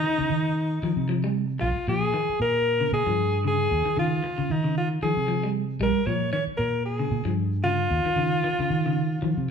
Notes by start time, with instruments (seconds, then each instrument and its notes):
Already playing: alto saxophone D#4
0.04 muted clean electric guitar stroke
0.18 clean electric guitar C#3, muted fingered electric bass stroke
0.30 fingered electric bass D#3
0.83 fingered electric bass D#3, clean electric guitar F3
0.96 fingered electric bass C3
1.09 clean electric guitar F3
1.24 clean electric guitar G3
1.59 fingered electric bass A#1, alto saxophone F4, muted clean electric guitar stroke
1.88 fingered electric bass A#2, clean electric guitar F3, alto saxophone G#4
2.14 clean electric guitar D#3
2.29 muted fingered electric bass stroke
2.40 fingered electric bass A#2, alto saxophone A#4
2.81 clean electric guitar C#3
2.92 fingered electric bass A#2, alto saxophone G#4
3.06 fingered electric bass G2, clean electric guitar F3
3.45 clean electric guitar C#3, alto saxophone G#4
3.71 fingered electric bass D#2
3.85 clean electric guitar D#3, muted fingered electric bass stroke
3.97 clean electric guitar C#3, fingered electric bass D#3, alto saxophone F4
4.24 muted clean electric guitar stroke
4.38 clean electric guitar C#3, muted fingered electric bass stroke
4.50 fingered electric bass D#3, alto saxophone D#4
4.64 clean electric guitar C#3
4.77 alto saxophone F4
5.03 fingered electric bass D#3, clean electric guitar F3, alto saxophone G#4
5.17 fingered electric bass C3
5.28 clean electric guitar F3
5.43 clean electric guitar G3
5.80 fingered electric bass A#1, clean electric guitar G3, alto saxophone A#4
6.06 fingered electric bass A#2, clean electric guitar F3, alto saxophone C#5
6.33 clean electric guitar D#3, alto saxophone C#5
6.47 muted fingered electric bass stroke
6.57 fingered electric bass A#2, alto saxophone A#4
6.86 alto saxophone G#4
6.99 clean electric guitar C#3
7.11 fingered electric bass A#2
7.25 fingered electric bass G2, clean electric guitar F3
7.64 clean electric guitar C#3, alto saxophone F4
7.90 fingered electric bass D#2
8.05 clean electric guitar D#3, muted fingered electric bass stroke
8.16 clean electric guitar C#3, fingered electric bass D#3
8.44 clean electric guitar D#3
8.59 clean electric guitar C#3, muted fingered electric bass stroke
8.70 fingered electric bass D#3
8.86 clean electric guitar C#3
9.22 fingered electric bass D#3, clean electric guitar F3
9.37 fingered electric bass C3